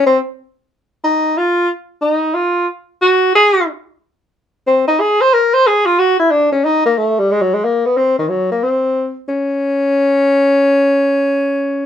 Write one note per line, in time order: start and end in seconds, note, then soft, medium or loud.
0.07 0.18 C4 medium
1.04 1.39 D#4 medium
1.38 1.69 F4 medium
2.02 2.36 D#4 medium
2.34 2.67 F4 medium
3.02 3.31 F#4 medium
3.35 3.65 G#4 medium
4.67 4.86 C4 medium
4.88 5.02 D#4 medium
5.00 5.23 G#4 medium
5.21 5.35 C5 medium
5.33 5.55 A#4 medium
5.54 5.69 C5 loud
5.67 5.87 G#4 medium
5.86 6.00 F4 medium
5.99 6.19 F#4 medium
6.19 6.32 E4 medium
6.31 6.52 D4 medium
6.52 6.66 C#4 medium
6.65 6.85 D#4 medium
6.86 6.99 A#3 medium
6.98 7.21 A3 medium
7.19 7.33 G3 medium
7.31 7.43 G#3 medium
7.41 7.55 F#3 medium
7.54 7.66 G#3 medium
7.65 7.87 A#3 medium
7.86 7.99 B3 medium
7.97 8.17 C4 medium
8.18 8.31 D#3 medium
8.29 8.50 F#3 medium
8.52 8.65 A#3 medium
8.64 9.16 C4 medium
9.29 11.86 C#4 medium